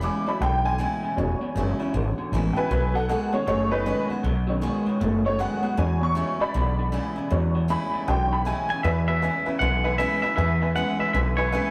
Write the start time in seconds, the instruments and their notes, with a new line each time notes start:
Already playing: steel-string acoustic guitar E2
0.01 clean electric guitar E2 C#3, steel-string acoustic guitar E3 G#3 C#4 E4, honky-tonk piano D6
0.26 clean electric guitar E2 C#3, honky-tonk piano F#3 G#3 C#4 B5, steel-string acoustic guitar C#4 E4, muted upright bass stroke
0.40 upright bass B1, clean electric guitar E2 D3, steel-string acoustic guitar B2, honky-tonk piano G5
0.65 clean electric guitar E2 D3, honky-tonk piano G#5
0.78 clean electric guitar E2 C#3, steel-string acoustic guitar E3 G#3 C#4 E4
1.03 clean electric guitar E2 C#3, muted upright bass stroke
1.16 upright bass E1, clean electric guitar E2 B2, steel-string acoustic guitar E2, honky-tonk piano F#3 G#3 C#4
1.41 clean electric guitar E2 B2, muted upright bass stroke
1.55 upright bass F#1, clean electric guitar E2 C#3, steel-string acoustic guitar E3 G#3 C#4 E4
1.79 clean electric guitar E2 C#3, steel-string acoustic guitar C#4 E4, muted upright bass stroke
1.93 upright bass G#1, clean electric guitar E2 D3, steel-string acoustic guitar B2
2.18 clean electric guitar E2 D3, muted upright bass stroke
2.32 upright bass A1, clean electric guitar E2 C#3, steel-string acoustic guitar E3 G#3 C#4 E4
2.53 clean electric guitar E2 C#3, steel-string acoustic guitar E4, honky-tonk piano B4 G5
2.58 steel-string acoustic guitar C#4, honky-tonk piano G#5
2.70 upright bass B1, clean electric guitar B2 F#3, steel-string acoustic guitar B2, honky-tonk piano B4 G#5
2.94 clean electric guitar B2 F#3, honky-tonk piano A4 F#5
3.09 clean electric guitar B2 G#3, steel-string acoustic guitar D#3 G#3 B3 F#4, honky-tonk piano A4 F#5
3.32 clean electric guitar B2 G#3, honky-tonk piano D#3 G#3 C#4 G#4 C#5, steel-string acoustic guitar B3 F#4, muted upright bass stroke
3.46 upright bass F#1, steel-string acoustic guitar F#2, clean electric guitar B2 A3, honky-tonk piano G#4 C#5
3.71 clean electric guitar B2 A3, honky-tonk piano D#4 B4
3.85 clean electric guitar B2 G#3, honky-tonk piano D#3 G#3 C#4, steel-string acoustic guitar D#3 G#3 B3 F#4
4.09 clean electric guitar B2 G#3, steel-string acoustic guitar B3 F#4, muted upright bass stroke
4.23 upright bass B1, clean electric guitar B2 F#3, steel-string acoustic guitar B2
4.47 clean electric guitar B2 F#3, honky-tonk piano D#3 G#3 C#4
4.61 clean electric guitar B2 G#3, steel-string acoustic guitar D#3 G#3 B3 F#4
4.86 clean electric guitar B2 G#3, steel-string acoustic guitar B3 F#4, muted upright bass stroke
5.00 upright bass F#1, steel-string acoustic guitar F#2, clean electric guitar B2 A3
5.25 clean electric guitar B2 A3, honky-tonk piano C#5
5.39 clean electric guitar B2 G#3, steel-string acoustic guitar D#3 G#3 B3 F#4, honky-tonk piano F#5
5.63 clean electric guitar B2 G#3, steel-string acoustic guitar B3 F#4, muted upright bass stroke
5.77 clean electric guitar E2 B2, steel-string acoustic guitar E2, upright bass E2, honky-tonk piano F#3 G#3 C#4 G#5
6.01 clean electric guitar E2 B2, honky-tonk piano C#6
6.15 clean electric guitar E2 C#3, steel-string acoustic guitar E3 G#3 C#4 E4
6.40 clean electric guitar E2 C#3, honky-tonk piano D5 B5, muted upright bass stroke
6.54 upright bass B1, clean electric guitar E2 D3, steel-string acoustic guitar B2
6.78 clean electric guitar E2 D3
6.92 clean electric guitar E2 C#3, steel-string acoustic guitar E3 G#3 C#4 E4
7.16 clean electric guitar E2 C#3, steel-string acoustic guitar C#4 E4, muted upright bass stroke
7.30 steel-string acoustic guitar E2, clean electric guitar E2 B2, upright bass E2, honky-tonk piano F#3 G#3 C#4
7.55 clean electric guitar E2 B2
7.68 clean electric guitar E2 C#3, steel-string acoustic guitar E3 G#3 C#4 E4, honky-tonk piano B5
7.94 clean electric guitar E2 C#3, muted upright bass stroke
8.07 upright bass B1, clean electric guitar E2 D3, steel-string acoustic guitar B2, honky-tonk piano F#3 G#3 C#4 G5
8.32 clean electric guitar E2 D3, honky-tonk piano B5
8.45 clean electric guitar E2 C#3, steel-string acoustic guitar E3 G#3 C#4 E4, honky-tonk piano G#5
8.69 clean electric guitar E2 C#3 G#5, steel-string acoustic guitar C#4 E4, muted upright bass stroke
8.83 upright bass E2, steel-string acoustic guitar E2, clean electric guitar E2 B2 E5, honky-tonk piano B4 E5 G#5
9.08 clean electric guitar E2 B2 E5, honky-tonk piano B4 E5 G#5
9.22 clean electric guitar E2 C#3, steel-string acoustic guitar E3 G#3 C#4 E4, honky-tonk piano B4 E5 G#5
9.46 clean electric guitar E2 C#3, steel-string acoustic guitar C#4 E4, honky-tonk piano B4 E5 G#5, muted upright bass stroke
9.59 upright bass B1, clean electric guitar E2 D3 F#5, steel-string acoustic guitar B2, honky-tonk piano B4 E5 G#5
9.84 clean electric guitar E2 D3, honky-tonk piano B4 E5 G#5
9.98 clean electric guitar E2 C#3 E5, steel-string acoustic guitar E3 G#3 C#4 E4, honky-tonk piano B4 E5 G#5
10.22 clean electric guitar E2 C#3 E5, steel-string acoustic guitar C#4 E4, honky-tonk piano B4 E5 G#5, muted upright bass stroke
10.36 clean electric guitar E2 B2 E5, upright bass E2, steel-string acoustic guitar E2, honky-tonk piano B4 E5 G#5
10.61 clean electric guitar E2 B2, honky-tonk piano B4 E5 G#5
10.75 clean electric guitar E2 C#3 F#5, steel-string acoustic guitar E3 G#3 C#4 E4, honky-tonk piano B4 E5 G#5
10.99 clean electric guitar E2 C#3 E5, honky-tonk piano B4 E5 G#5, muted upright bass stroke
11.13 upright bass B1, clean electric guitar E2 D3 E5, steel-string acoustic guitar B2, honky-tonk piano B4 E5 G#5
11.37 clean electric guitar E2 D3 C#5, honky-tonk piano B4 E5 G#5
11.52 clean electric guitar E2 C#3, steel-string acoustic guitar E3 G#3 C#4 E4, honky-tonk piano B4 E5 G#5